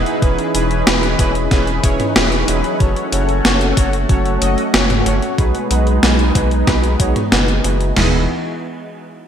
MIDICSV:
0, 0, Header, 1, 6, 480
1, 0, Start_track
1, 0, Key_signature, 4, "major"
1, 0, Tempo, 645161
1, 166, Time_signature, 4, 2, 24, 8
1, 6904, End_track
2, 0, Start_track
2, 0, Title_t, "Analog polysynth"
2, 0, Program_c, 0, 90
2, 0, Note_on_c, 0, 63, 86
2, 0, Note_on_c, 0, 64, 78
2, 0, Note_on_c, 0, 68, 77
2, 0, Note_on_c, 0, 71, 93
2, 137, Note_off_c, 0, 63, 0
2, 137, Note_off_c, 0, 64, 0
2, 137, Note_off_c, 0, 68, 0
2, 137, Note_off_c, 0, 71, 0
2, 165, Note_on_c, 0, 52, 79
2, 165, Note_on_c, 0, 61, 68
2, 165, Note_on_c, 0, 64, 72
2, 165, Note_on_c, 0, 68, 72
2, 165, Note_on_c, 0, 71, 84
2, 377, Note_off_c, 0, 52, 0
2, 377, Note_off_c, 0, 61, 0
2, 377, Note_off_c, 0, 64, 0
2, 377, Note_off_c, 0, 68, 0
2, 377, Note_off_c, 0, 71, 0
2, 405, Note_on_c, 0, 52, 84
2, 405, Note_on_c, 0, 61, 76
2, 405, Note_on_c, 0, 64, 77
2, 405, Note_on_c, 0, 68, 77
2, 405, Note_on_c, 0, 71, 91
2, 617, Note_off_c, 0, 52, 0
2, 617, Note_off_c, 0, 61, 0
2, 617, Note_off_c, 0, 64, 0
2, 617, Note_off_c, 0, 68, 0
2, 617, Note_off_c, 0, 71, 0
2, 645, Note_on_c, 0, 52, 74
2, 645, Note_on_c, 0, 61, 72
2, 645, Note_on_c, 0, 68, 71
2, 645, Note_on_c, 0, 71, 86
2, 646, Note_on_c, 0, 64, 69
2, 744, Note_off_c, 0, 52, 0
2, 744, Note_off_c, 0, 61, 0
2, 744, Note_off_c, 0, 64, 0
2, 744, Note_off_c, 0, 68, 0
2, 744, Note_off_c, 0, 71, 0
2, 886, Note_on_c, 0, 52, 91
2, 886, Note_on_c, 0, 61, 84
2, 886, Note_on_c, 0, 64, 85
2, 886, Note_on_c, 0, 68, 85
2, 886, Note_on_c, 0, 71, 102
2, 984, Note_off_c, 0, 52, 0
2, 984, Note_off_c, 0, 61, 0
2, 984, Note_off_c, 0, 64, 0
2, 984, Note_off_c, 0, 68, 0
2, 984, Note_off_c, 0, 71, 0
2, 1125, Note_on_c, 0, 64, 74
2, 1125, Note_on_c, 0, 71, 93
2, 1126, Note_on_c, 0, 52, 81
2, 1126, Note_on_c, 0, 61, 74
2, 1126, Note_on_c, 0, 68, 76
2, 1337, Note_off_c, 0, 52, 0
2, 1337, Note_off_c, 0, 61, 0
2, 1337, Note_off_c, 0, 64, 0
2, 1337, Note_off_c, 0, 68, 0
2, 1337, Note_off_c, 0, 71, 0
2, 1366, Note_on_c, 0, 52, 84
2, 1366, Note_on_c, 0, 61, 77
2, 1366, Note_on_c, 0, 64, 76
2, 1366, Note_on_c, 0, 68, 76
2, 1366, Note_on_c, 0, 73, 94
2, 1524, Note_off_c, 0, 52, 0
2, 1524, Note_off_c, 0, 61, 0
2, 1524, Note_off_c, 0, 64, 0
2, 1524, Note_off_c, 0, 68, 0
2, 1524, Note_off_c, 0, 73, 0
2, 1606, Note_on_c, 0, 52, 88
2, 1606, Note_on_c, 0, 61, 85
2, 1606, Note_on_c, 0, 64, 80
2, 1606, Note_on_c, 0, 68, 81
2, 1606, Note_on_c, 0, 71, 99
2, 1704, Note_off_c, 0, 52, 0
2, 1704, Note_off_c, 0, 61, 0
2, 1704, Note_off_c, 0, 64, 0
2, 1704, Note_off_c, 0, 68, 0
2, 1704, Note_off_c, 0, 71, 0
2, 1846, Note_on_c, 0, 54, 88
2, 1846, Note_on_c, 0, 61, 77
2, 1846, Note_on_c, 0, 64, 78
2, 1846, Note_on_c, 0, 68, 78
2, 1846, Note_on_c, 0, 71, 95
2, 2057, Note_off_c, 0, 54, 0
2, 2057, Note_off_c, 0, 61, 0
2, 2057, Note_off_c, 0, 64, 0
2, 2057, Note_off_c, 0, 68, 0
2, 2057, Note_off_c, 0, 71, 0
2, 2086, Note_on_c, 0, 54, 79
2, 2086, Note_on_c, 0, 61, 70
2, 2086, Note_on_c, 0, 66, 73
2, 2086, Note_on_c, 0, 69, 72
2, 2086, Note_on_c, 0, 73, 85
2, 2297, Note_off_c, 0, 54, 0
2, 2297, Note_off_c, 0, 61, 0
2, 2297, Note_off_c, 0, 66, 0
2, 2297, Note_off_c, 0, 69, 0
2, 2297, Note_off_c, 0, 73, 0
2, 2326, Note_on_c, 0, 54, 84
2, 2326, Note_on_c, 0, 61, 76
2, 2326, Note_on_c, 0, 66, 79
2, 2326, Note_on_c, 0, 69, 74
2, 2326, Note_on_c, 0, 73, 91
2, 2537, Note_off_c, 0, 54, 0
2, 2537, Note_off_c, 0, 61, 0
2, 2537, Note_off_c, 0, 66, 0
2, 2537, Note_off_c, 0, 69, 0
2, 2537, Note_off_c, 0, 73, 0
2, 2566, Note_on_c, 0, 54, 76
2, 2566, Note_on_c, 0, 61, 70
2, 2566, Note_on_c, 0, 66, 69
2, 2566, Note_on_c, 0, 69, 70
2, 2566, Note_on_c, 0, 73, 87
2, 2664, Note_off_c, 0, 54, 0
2, 2664, Note_off_c, 0, 61, 0
2, 2664, Note_off_c, 0, 66, 0
2, 2664, Note_off_c, 0, 69, 0
2, 2664, Note_off_c, 0, 73, 0
2, 2805, Note_on_c, 0, 69, 88
2, 2805, Note_on_c, 0, 73, 100
2, 2806, Note_on_c, 0, 54, 92
2, 2806, Note_on_c, 0, 61, 88
2, 2806, Note_on_c, 0, 66, 86
2, 2904, Note_off_c, 0, 54, 0
2, 2904, Note_off_c, 0, 61, 0
2, 2904, Note_off_c, 0, 66, 0
2, 2904, Note_off_c, 0, 69, 0
2, 2904, Note_off_c, 0, 73, 0
2, 3045, Note_on_c, 0, 69, 77
2, 3046, Note_on_c, 0, 54, 83
2, 3046, Note_on_c, 0, 61, 76
2, 3046, Note_on_c, 0, 66, 75
2, 3046, Note_on_c, 0, 73, 92
2, 3257, Note_off_c, 0, 54, 0
2, 3257, Note_off_c, 0, 61, 0
2, 3257, Note_off_c, 0, 66, 0
2, 3257, Note_off_c, 0, 69, 0
2, 3257, Note_off_c, 0, 73, 0
2, 3286, Note_on_c, 0, 54, 87
2, 3286, Note_on_c, 0, 61, 78
2, 3286, Note_on_c, 0, 66, 80
2, 3286, Note_on_c, 0, 69, 77
2, 3286, Note_on_c, 0, 75, 92
2, 3443, Note_off_c, 0, 61, 0
2, 3443, Note_off_c, 0, 69, 0
2, 3443, Note_off_c, 0, 75, 0
2, 3444, Note_off_c, 0, 54, 0
2, 3444, Note_off_c, 0, 66, 0
2, 3526, Note_on_c, 0, 54, 87
2, 3526, Note_on_c, 0, 61, 81
2, 3526, Note_on_c, 0, 66, 81
2, 3526, Note_on_c, 0, 69, 83
2, 3526, Note_on_c, 0, 73, 100
2, 3624, Note_off_c, 0, 73, 0
2, 3625, Note_off_c, 0, 54, 0
2, 3625, Note_off_c, 0, 61, 0
2, 3625, Note_off_c, 0, 66, 0
2, 3625, Note_off_c, 0, 69, 0
2, 3765, Note_on_c, 0, 66, 77
2, 3766, Note_on_c, 0, 61, 86
2, 3766, Note_on_c, 0, 69, 78
2, 3766, Note_on_c, 0, 73, 96
2, 3977, Note_off_c, 0, 61, 0
2, 3977, Note_off_c, 0, 66, 0
2, 3977, Note_off_c, 0, 69, 0
2, 3977, Note_off_c, 0, 73, 0
2, 4006, Note_on_c, 0, 47, 77
2, 4006, Note_on_c, 0, 63, 71
2, 4006, Note_on_c, 0, 66, 69
2, 4006, Note_on_c, 0, 68, 73
2, 4006, Note_on_c, 0, 71, 88
2, 4217, Note_off_c, 0, 47, 0
2, 4217, Note_off_c, 0, 63, 0
2, 4217, Note_off_c, 0, 66, 0
2, 4217, Note_off_c, 0, 68, 0
2, 4217, Note_off_c, 0, 71, 0
2, 4246, Note_on_c, 0, 47, 82
2, 4246, Note_on_c, 0, 63, 75
2, 4246, Note_on_c, 0, 66, 78
2, 4246, Note_on_c, 0, 68, 77
2, 4246, Note_on_c, 0, 71, 95
2, 4457, Note_off_c, 0, 47, 0
2, 4457, Note_off_c, 0, 63, 0
2, 4457, Note_off_c, 0, 66, 0
2, 4457, Note_off_c, 0, 68, 0
2, 4457, Note_off_c, 0, 71, 0
2, 4486, Note_on_c, 0, 47, 75
2, 4486, Note_on_c, 0, 63, 72
2, 4486, Note_on_c, 0, 66, 70
2, 4486, Note_on_c, 0, 68, 70
2, 4486, Note_on_c, 0, 71, 84
2, 4584, Note_off_c, 0, 47, 0
2, 4584, Note_off_c, 0, 63, 0
2, 4584, Note_off_c, 0, 66, 0
2, 4584, Note_off_c, 0, 68, 0
2, 4584, Note_off_c, 0, 71, 0
2, 4726, Note_on_c, 0, 47, 94
2, 4726, Note_on_c, 0, 63, 82
2, 4726, Note_on_c, 0, 66, 84
2, 4726, Note_on_c, 0, 68, 83
2, 4726, Note_on_c, 0, 71, 100
2, 4824, Note_off_c, 0, 47, 0
2, 4824, Note_off_c, 0, 63, 0
2, 4824, Note_off_c, 0, 66, 0
2, 4824, Note_off_c, 0, 68, 0
2, 4824, Note_off_c, 0, 71, 0
2, 4966, Note_on_c, 0, 47, 84
2, 4966, Note_on_c, 0, 63, 74
2, 4966, Note_on_c, 0, 66, 73
2, 4966, Note_on_c, 0, 68, 78
2, 4966, Note_on_c, 0, 71, 91
2, 5177, Note_off_c, 0, 47, 0
2, 5177, Note_off_c, 0, 63, 0
2, 5177, Note_off_c, 0, 66, 0
2, 5177, Note_off_c, 0, 68, 0
2, 5177, Note_off_c, 0, 71, 0
2, 5206, Note_on_c, 0, 47, 85
2, 5206, Note_on_c, 0, 63, 78
2, 5206, Note_on_c, 0, 66, 78
2, 5206, Note_on_c, 0, 68, 79
2, 5206, Note_on_c, 0, 73, 92
2, 5363, Note_off_c, 0, 63, 0
2, 5363, Note_off_c, 0, 66, 0
2, 5364, Note_off_c, 0, 47, 0
2, 5364, Note_off_c, 0, 68, 0
2, 5364, Note_off_c, 0, 73, 0
2, 5446, Note_on_c, 0, 47, 91
2, 5446, Note_on_c, 0, 63, 82
2, 5446, Note_on_c, 0, 66, 82
2, 5446, Note_on_c, 0, 68, 84
2, 5446, Note_on_c, 0, 71, 98
2, 5544, Note_off_c, 0, 47, 0
2, 5544, Note_off_c, 0, 63, 0
2, 5544, Note_off_c, 0, 66, 0
2, 5544, Note_off_c, 0, 68, 0
2, 5544, Note_off_c, 0, 71, 0
2, 5686, Note_on_c, 0, 52, 84
2, 5686, Note_on_c, 0, 63, 78
2, 5686, Note_on_c, 0, 66, 78
2, 5686, Note_on_c, 0, 68, 78
2, 5686, Note_on_c, 0, 71, 94
2, 5897, Note_off_c, 0, 52, 0
2, 5897, Note_off_c, 0, 63, 0
2, 5897, Note_off_c, 0, 66, 0
2, 5897, Note_off_c, 0, 68, 0
2, 5897, Note_off_c, 0, 71, 0
2, 5925, Note_on_c, 0, 63, 87
2, 5925, Note_on_c, 0, 64, 78
2, 5925, Note_on_c, 0, 68, 79
2, 5925, Note_on_c, 0, 71, 96
2, 6104, Note_off_c, 0, 63, 0
2, 6104, Note_off_c, 0, 64, 0
2, 6104, Note_off_c, 0, 68, 0
2, 6104, Note_off_c, 0, 71, 0
2, 6904, End_track
3, 0, Start_track
3, 0, Title_t, "Analog synth pad"
3, 0, Program_c, 1, 89
3, 0, Note_on_c, 1, 52, 83
3, 0, Note_on_c, 1, 59, 80
3, 0, Note_on_c, 1, 63, 76
3, 0, Note_on_c, 1, 66, 78
3, 0, Note_on_c, 1, 68, 91
3, 147, Note_off_c, 1, 59, 0
3, 147, Note_off_c, 1, 66, 0
3, 164, Note_on_c, 1, 71, 94
3, 165, Note_on_c, 1, 61, 75
3, 2056, Note_off_c, 1, 52, 0
3, 2056, Note_off_c, 1, 63, 0
3, 2056, Note_off_c, 1, 68, 0
3, 2066, Note_off_c, 1, 71, 0
3, 2087, Note_on_c, 1, 57, 88
3, 2087, Note_on_c, 1, 66, 92
3, 3975, Note_off_c, 1, 61, 0
3, 3987, Note_off_c, 1, 57, 0
3, 3987, Note_off_c, 1, 66, 0
3, 4005, Note_on_c, 1, 56, 87
3, 4005, Note_on_c, 1, 59, 80
3, 4005, Note_on_c, 1, 63, 94
3, 5906, Note_off_c, 1, 56, 0
3, 5906, Note_off_c, 1, 59, 0
3, 5906, Note_off_c, 1, 63, 0
3, 5924, Note_on_c, 1, 52, 74
3, 5924, Note_on_c, 1, 59, 70
3, 5924, Note_on_c, 1, 66, 69
3, 5924, Note_on_c, 1, 68, 81
3, 5925, Note_on_c, 1, 63, 69
3, 6148, Note_off_c, 1, 52, 0
3, 6148, Note_off_c, 1, 59, 0
3, 6148, Note_off_c, 1, 63, 0
3, 6148, Note_off_c, 1, 66, 0
3, 6148, Note_off_c, 1, 68, 0
3, 6904, End_track
4, 0, Start_track
4, 0, Title_t, "Analog synth bass"
4, 0, Program_c, 2, 38
4, 165, Note_on_c, 2, 28, 97
4, 270, Note_off_c, 2, 28, 0
4, 404, Note_on_c, 2, 28, 84
4, 614, Note_off_c, 2, 28, 0
4, 644, Note_on_c, 2, 28, 83
4, 854, Note_off_c, 2, 28, 0
4, 885, Note_on_c, 2, 28, 90
4, 1094, Note_off_c, 2, 28, 0
4, 1125, Note_on_c, 2, 28, 85
4, 1334, Note_off_c, 2, 28, 0
4, 1365, Note_on_c, 2, 28, 87
4, 1470, Note_off_c, 2, 28, 0
4, 1605, Note_on_c, 2, 28, 96
4, 1814, Note_off_c, 2, 28, 0
4, 1845, Note_on_c, 2, 28, 98
4, 1950, Note_off_c, 2, 28, 0
4, 2086, Note_on_c, 2, 30, 100
4, 2190, Note_off_c, 2, 30, 0
4, 2325, Note_on_c, 2, 30, 84
4, 2534, Note_off_c, 2, 30, 0
4, 2565, Note_on_c, 2, 30, 81
4, 2774, Note_off_c, 2, 30, 0
4, 2806, Note_on_c, 2, 30, 87
4, 3014, Note_off_c, 2, 30, 0
4, 3046, Note_on_c, 2, 30, 84
4, 3254, Note_off_c, 2, 30, 0
4, 3286, Note_on_c, 2, 30, 89
4, 3390, Note_off_c, 2, 30, 0
4, 3525, Note_on_c, 2, 30, 98
4, 3734, Note_off_c, 2, 30, 0
4, 3766, Note_on_c, 2, 30, 103
4, 3870, Note_off_c, 2, 30, 0
4, 4006, Note_on_c, 2, 35, 100
4, 4110, Note_off_c, 2, 35, 0
4, 4246, Note_on_c, 2, 35, 84
4, 4454, Note_off_c, 2, 35, 0
4, 4486, Note_on_c, 2, 35, 81
4, 4694, Note_off_c, 2, 35, 0
4, 4725, Note_on_c, 2, 35, 88
4, 4934, Note_off_c, 2, 35, 0
4, 4966, Note_on_c, 2, 35, 83
4, 5174, Note_off_c, 2, 35, 0
4, 5206, Note_on_c, 2, 35, 89
4, 5310, Note_off_c, 2, 35, 0
4, 5446, Note_on_c, 2, 30, 102
4, 5654, Note_off_c, 2, 30, 0
4, 5686, Note_on_c, 2, 30, 87
4, 5894, Note_off_c, 2, 30, 0
4, 5926, Note_on_c, 2, 28, 97
4, 6149, Note_off_c, 2, 28, 0
4, 6904, End_track
5, 0, Start_track
5, 0, Title_t, "Impact"
5, 0, Program_c, 3, 103
5, 0, Note_on_c, 3, 60, 78
5, 166, Note_off_c, 3, 60, 0
5, 6904, End_track
6, 0, Start_track
6, 0, Title_t, "Drums"
6, 46, Note_on_c, 9, 42, 40
6, 121, Note_off_c, 9, 42, 0
6, 165, Note_on_c, 9, 36, 118
6, 166, Note_on_c, 9, 42, 67
6, 240, Note_off_c, 9, 36, 0
6, 241, Note_off_c, 9, 42, 0
6, 286, Note_on_c, 9, 42, 42
6, 361, Note_off_c, 9, 42, 0
6, 406, Note_on_c, 9, 42, 96
6, 480, Note_off_c, 9, 42, 0
6, 526, Note_on_c, 9, 42, 43
6, 600, Note_off_c, 9, 42, 0
6, 647, Note_on_c, 9, 38, 127
6, 647, Note_on_c, 9, 42, 69
6, 721, Note_off_c, 9, 38, 0
6, 721, Note_off_c, 9, 42, 0
6, 766, Note_on_c, 9, 42, 42
6, 841, Note_off_c, 9, 42, 0
6, 885, Note_on_c, 9, 36, 110
6, 886, Note_on_c, 9, 42, 97
6, 960, Note_off_c, 9, 36, 0
6, 960, Note_off_c, 9, 42, 0
6, 1006, Note_on_c, 9, 42, 42
6, 1080, Note_off_c, 9, 42, 0
6, 1125, Note_on_c, 9, 38, 64
6, 1125, Note_on_c, 9, 42, 71
6, 1126, Note_on_c, 9, 36, 123
6, 1200, Note_off_c, 9, 36, 0
6, 1200, Note_off_c, 9, 38, 0
6, 1200, Note_off_c, 9, 42, 0
6, 1245, Note_on_c, 9, 42, 39
6, 1320, Note_off_c, 9, 42, 0
6, 1366, Note_on_c, 9, 36, 111
6, 1366, Note_on_c, 9, 42, 98
6, 1440, Note_off_c, 9, 36, 0
6, 1440, Note_off_c, 9, 42, 0
6, 1486, Note_on_c, 9, 42, 41
6, 1486, Note_on_c, 9, 45, 61
6, 1560, Note_off_c, 9, 42, 0
6, 1560, Note_off_c, 9, 45, 0
6, 1606, Note_on_c, 9, 38, 122
6, 1606, Note_on_c, 9, 42, 68
6, 1680, Note_off_c, 9, 38, 0
6, 1680, Note_off_c, 9, 42, 0
6, 1726, Note_on_c, 9, 42, 42
6, 1800, Note_off_c, 9, 42, 0
6, 1846, Note_on_c, 9, 42, 100
6, 1920, Note_off_c, 9, 42, 0
6, 1965, Note_on_c, 9, 42, 41
6, 2040, Note_off_c, 9, 42, 0
6, 2085, Note_on_c, 9, 42, 70
6, 2086, Note_on_c, 9, 36, 124
6, 2160, Note_off_c, 9, 36, 0
6, 2160, Note_off_c, 9, 42, 0
6, 2206, Note_on_c, 9, 42, 41
6, 2280, Note_off_c, 9, 42, 0
6, 2325, Note_on_c, 9, 42, 96
6, 2399, Note_off_c, 9, 42, 0
6, 2446, Note_on_c, 9, 42, 41
6, 2520, Note_off_c, 9, 42, 0
6, 2566, Note_on_c, 9, 38, 123
6, 2566, Note_on_c, 9, 42, 66
6, 2640, Note_off_c, 9, 38, 0
6, 2640, Note_off_c, 9, 42, 0
6, 2686, Note_on_c, 9, 42, 42
6, 2760, Note_off_c, 9, 42, 0
6, 2806, Note_on_c, 9, 36, 114
6, 2806, Note_on_c, 9, 42, 98
6, 2880, Note_off_c, 9, 36, 0
6, 2881, Note_off_c, 9, 42, 0
6, 2926, Note_on_c, 9, 42, 42
6, 3001, Note_off_c, 9, 42, 0
6, 3046, Note_on_c, 9, 36, 122
6, 3046, Note_on_c, 9, 42, 69
6, 3120, Note_off_c, 9, 36, 0
6, 3120, Note_off_c, 9, 42, 0
6, 3166, Note_on_c, 9, 42, 40
6, 3240, Note_off_c, 9, 42, 0
6, 3286, Note_on_c, 9, 42, 98
6, 3361, Note_off_c, 9, 42, 0
6, 3406, Note_on_c, 9, 42, 42
6, 3481, Note_off_c, 9, 42, 0
6, 3526, Note_on_c, 9, 38, 124
6, 3526, Note_on_c, 9, 42, 67
6, 3600, Note_off_c, 9, 38, 0
6, 3600, Note_off_c, 9, 42, 0
6, 3646, Note_on_c, 9, 42, 41
6, 3646, Note_on_c, 9, 45, 91
6, 3721, Note_off_c, 9, 42, 0
6, 3721, Note_off_c, 9, 45, 0
6, 3766, Note_on_c, 9, 42, 95
6, 3841, Note_off_c, 9, 42, 0
6, 3887, Note_on_c, 9, 42, 39
6, 3961, Note_off_c, 9, 42, 0
6, 4006, Note_on_c, 9, 36, 124
6, 4007, Note_on_c, 9, 42, 66
6, 4080, Note_off_c, 9, 36, 0
6, 4081, Note_off_c, 9, 42, 0
6, 4126, Note_on_c, 9, 42, 40
6, 4201, Note_off_c, 9, 42, 0
6, 4246, Note_on_c, 9, 42, 89
6, 4320, Note_off_c, 9, 42, 0
6, 4366, Note_on_c, 9, 42, 40
6, 4441, Note_off_c, 9, 42, 0
6, 4486, Note_on_c, 9, 38, 122
6, 4486, Note_on_c, 9, 42, 64
6, 4560, Note_off_c, 9, 38, 0
6, 4560, Note_off_c, 9, 42, 0
6, 4606, Note_on_c, 9, 42, 40
6, 4681, Note_off_c, 9, 42, 0
6, 4726, Note_on_c, 9, 36, 109
6, 4727, Note_on_c, 9, 42, 94
6, 4800, Note_off_c, 9, 36, 0
6, 4801, Note_off_c, 9, 42, 0
6, 4846, Note_on_c, 9, 42, 40
6, 4921, Note_off_c, 9, 42, 0
6, 4966, Note_on_c, 9, 36, 123
6, 4966, Note_on_c, 9, 38, 64
6, 4966, Note_on_c, 9, 42, 64
6, 5040, Note_off_c, 9, 36, 0
6, 5040, Note_off_c, 9, 38, 0
6, 5040, Note_off_c, 9, 42, 0
6, 5086, Note_on_c, 9, 42, 38
6, 5160, Note_off_c, 9, 42, 0
6, 5206, Note_on_c, 9, 36, 110
6, 5206, Note_on_c, 9, 42, 92
6, 5280, Note_off_c, 9, 36, 0
6, 5280, Note_off_c, 9, 42, 0
6, 5327, Note_on_c, 9, 42, 40
6, 5327, Note_on_c, 9, 45, 63
6, 5401, Note_off_c, 9, 42, 0
6, 5401, Note_off_c, 9, 45, 0
6, 5447, Note_on_c, 9, 38, 121
6, 5447, Note_on_c, 9, 42, 64
6, 5521, Note_off_c, 9, 38, 0
6, 5521, Note_off_c, 9, 42, 0
6, 5567, Note_on_c, 9, 42, 39
6, 5641, Note_off_c, 9, 42, 0
6, 5687, Note_on_c, 9, 42, 93
6, 5762, Note_off_c, 9, 42, 0
6, 5807, Note_on_c, 9, 42, 37
6, 5881, Note_off_c, 9, 42, 0
6, 5926, Note_on_c, 9, 38, 106
6, 5926, Note_on_c, 9, 43, 108
6, 5926, Note_on_c, 9, 49, 89
6, 6000, Note_off_c, 9, 38, 0
6, 6000, Note_off_c, 9, 43, 0
6, 6000, Note_off_c, 9, 49, 0
6, 6904, End_track
0, 0, End_of_file